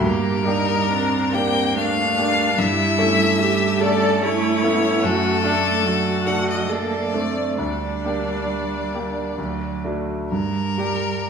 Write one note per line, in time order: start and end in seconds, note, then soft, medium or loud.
0.01 0.44 G2 medium
0.01 0.43 A#3 medium
0.01 0.46 G4 medium
0.01 1.35 A#4 medium
0.44 0.92 G3 medium
0.44 1.29 A#3 soft
0.44 1.29 D4 soft
0.44 0.90 D#4 medium
0.44 1.29 G4 soft
0.89 1.35 C4 medium
0.89 1.35 D4 soft
1.33 2.13 A#3 soft
1.33 1.78 A#3 medium
1.33 1.75 C4 medium
1.33 2.13 D4 soft
1.33 2.14 G4 soft
1.33 1.76 G5 medium
1.76 2.57 A3 medium
1.76 2.60 D4 medium
1.76 2.60 F5 medium
2.17 2.54 A#3 soft
2.17 2.54 D4 soft
2.17 2.54 G4 soft
2.57 2.97 G2 medium
2.57 3.37 G3 medium
2.57 3.40 E4 medium
2.57 3.82 E5 loud
2.98 3.77 A3 medium
2.98 3.77 C#4 medium
2.98 3.77 A4 medium
3.39 4.21 G3 medium
3.39 3.82 G4 medium
3.80 4.59 A3 soft
3.80 4.59 C#4 medium
3.80 4.24 A4 medium
3.80 4.60 A4 medium
3.80 4.23 D5 medium
4.23 4.65 A3 medium
4.23 5.05 E4 medium
4.23 5.06 C#5 loud
4.64 5.00 A3 medium
4.64 5.06 B3 medium
4.64 5.00 C#4 soft
4.64 5.00 A4 medium
5.03 5.42 F#2 medium
5.03 5.87 A3 medium
5.03 5.43 F#4 medium
5.03 6.28 A4 loud
5.44 6.23 A3 medium
5.44 5.87 D4 medium
5.44 6.23 D4 soft
5.44 6.23 A4 medium
5.85 6.71 F#3 medium
5.85 6.71 F#4 medium
6.26 7.09 A3 soft
6.26 7.09 D4 soft
6.26 7.10 A4 soft
6.26 6.48 F#5 medium
6.50 6.73 D#5 medium
6.69 7.16 A#3 medium
6.69 7.14 A4 medium
6.69 7.59 D5 medium
7.13 7.54 A3 soft
7.13 7.61 A3 soft
7.13 7.59 C4 soft
7.13 7.54 D4 soft
7.13 7.55 A4 soft
7.57 8.03 D2 soft
7.57 9.39 G3 soft
7.57 9.84 D4 soft
7.57 9.81 D5 medium
8.05 8.90 A#3 soft
8.05 8.90 D4 soft
8.05 8.91 G4 soft
8.95 9.35 A#3 soft
8.95 9.35 D4 soft
8.95 9.35 G4 soft
9.38 9.83 D2 soft
9.38 10.09 F#3 soft
9.84 10.28 A3 soft
9.84 10.28 D4 soft
9.84 10.28 F#4 soft
10.32 10.76 G2 soft
10.32 11.30 G3 soft
10.32 11.30 A#4 medium
10.78 11.30 G3 soft
10.78 11.30 D4 soft
10.78 11.30 G4 soft
11.21 11.30 G4 medium